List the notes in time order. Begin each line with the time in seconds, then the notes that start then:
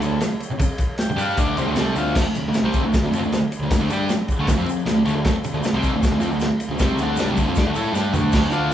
Already playing: A4
0.01 D2 D3 A3, ride, shaker
0.20 muted picked electric bass stroke, muted distorted electric guitar stroke, snare, ride, shaker
0.40 ride, shaker
0.51 muted distorted electric guitar stroke, muted picked electric bass stroke
0.59 muted distorted electric guitar stroke, muted picked electric bass stroke, kick, ride, shaker
0.78 kick, ride, shaker
0.98 G5, snare, ride, shaker
1.09 muted picked electric bass stroke, muted distorted electric guitar stroke
1.16 G2 G3 D4 G4, ride, shaker
1.21 F5
1.37 D2 D3 A3 D4 D5, kick, ride, shaker
1.56 C2 C3 G3 C5, ride, shaker
1.66 D2 D3 A3, shaker
1.75 C2 C3 G3 C4 A4, snare, ride, shaker
1.95 D2 D3 A3 D4 F4, ride, shaker
2.15 D2 D3 A3, kick, snare, crash, shaker
2.24 muted picked electric bass stroke, muted distorted electric guitar stroke
2.34 muted picked electric bass stroke, muted distorted electric guitar stroke, ride, shaker
2.43 D2
2.48 D3 A3
2.53 muted picked electric bass stroke, muted distorted electric guitar stroke, snare, ride, shaker
2.62 C2 C3 G3 C4
2.73 kick, ride, shaker
2.81 D2 D3 A3
2.93 muted picked electric bass stroke, muted distorted electric guitar stroke, kick, snare, ride, shaker
3.01 D2 D3 A3, shaker
3.11 F2, ride, shaker
3.15 F3 C4
3.19 D2
3.23 D3 A3
3.32 snare, ride, shaker
3.52 ride, shaker
3.59 D2 D3
3.63 A3
3.70 D2 D3 A3, kick, snare, ride, shaker
3.80 D2 D3 A3
3.89 G2 G3 D4 G4, ride, shaker
4.08 muted picked electric bass stroke, muted distorted electric guitar stroke, snare, ride, shaker
4.28 kick, ride, shaker
4.38 D2 D3 A3
4.47 D2 D3 A3, kick, snare, ride, shaker
4.56 F2 F3 C4
4.66 muted picked electric bass stroke, muted distorted electric guitar stroke, ride, shaker
4.79 shaker
4.85 D2 D3 A3, snare, ride, shaker
5.05 D2 D3 A3, ride, shaker
5.15 D2 D3 A3
5.24 D2 D3 A3, kick, snare, ride, shaker
5.33 muted picked electric bass stroke, muted distorted electric guitar stroke
5.43 muted picked electric bass stroke, muted distorted electric guitar stroke, ride, shaker
5.52 D2 D3 A3
5.63 muted picked electric bass stroke, muted distorted electric guitar stroke, snare, ride, shaker
5.73 C2 C3 G3 C4
5.83 kick, ride, shaker
5.93 D2 D3 A3
6.01 muted distorted electric guitar stroke, muted picked electric bass stroke, kick, snare, ride, shaker
6.11 D2 D3 A3
6.19 F2 F3 C4, ride, shaker
6.29 D2 D3 A3
6.40 snare, ride, shaker
6.60 ride, shaker
6.68 D2 D3 A3
6.79 C2 C3 G3 C4, kick, snare, ride, shaker
6.96 D2, ride, shaker
7.00 D3 A3 D4
7.16 G2 G3, ride, shaker
7.20 D4, snare
7.24 C2
7.29 C3 G3
7.37 D2 D3 A3, kick, ride, shaker
7.46 F2 F3 C4
7.55 G2 G3 D4, kick, snare, ride, shaker
7.64 D2 D3 A3
7.74 A2 A3 E4 A4, ride, shaker
7.92 G2 G3 D4 G4, snare, shaker
8.04 shaker
8.12 D2 D3 A3 D4, floor tom, shaker
8.32 D2 D3 A3 D4, kick, snare, crash, shaker
8.51 D2 D3 A3 D4 F4, shaker
8.71 D2